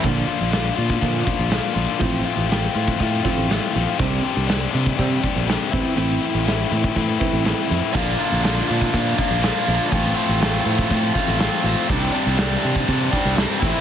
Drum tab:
HH |o---o---o---o---|o---o---o---o---|o---o---o---o---|o---o---o---o---|
SD |----o-------o---|----o-------o---|----o-------o---|----o-------o---|
BD |o------oo-o-----|o------oo-o-----|o------oo-o---o-|-------oo-o-----|

HH |o---o---o---o---|o---o---o---o---|o---o---o---o---|
SD |----o-------o---|----o-------o---|----o-------o---|
BD |o------oo-o-----|o------oo-o-----|o------oo-o---o-|